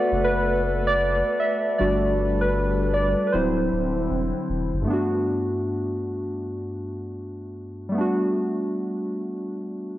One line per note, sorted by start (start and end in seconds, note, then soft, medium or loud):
0.00 0.41 A3 medium
0.00 1.75 A3 medium
0.00 0.42 B3 soft
0.00 0.42 F#4 medium
0.00 3.29 A4 medium
0.00 1.76 B4 medium
0.00 0.87 D5 medium
0.00 1.40 E5 medium
0.00 1.80 F#5 loud
0.12 1.23 F#1 medium
0.24 0.89 B4 loud
0.87 1.36 D5 medium
1.40 1.80 E5 medium
1.78 3.15 G1 medium
1.78 3.29 G3 medium
1.78 3.31 G3 medium
1.78 3.29 A3 soft
1.78 3.31 D4 medium
1.78 3.29 D4 soft
1.78 3.29 F#4 medium
1.78 3.31 B4 medium
1.78 2.43 D5 medium
2.41 2.96 B4 medium
2.94 3.28 D5 medium
3.27 3.32 B4 medium
3.32 3.69 D1 loud
3.32 4.85 D3 medium
3.32 4.44 F#3 medium
3.32 4.85 C4 medium
3.32 4.45 C4 medium
3.32 4.86 E4 medium
3.32 4.45 E4 medium
3.32 4.44 C5 medium
3.72 4.08 D1 medium
4.11 4.33 E1 medium
4.49 4.71 E1 medium
4.73 4.86 F#1 medium
4.81 7.88 G2 medium
4.81 7.89 A3 medium
4.87 7.91 B3 medium
4.87 7.92 D4 medium
4.93 7.93 F#4 medium
7.89 9.98 G3 medium
7.89 9.81 A3 medium
7.95 9.83 B3 medium
7.95 9.84 D4 medium
8.01 9.86 F#4 medium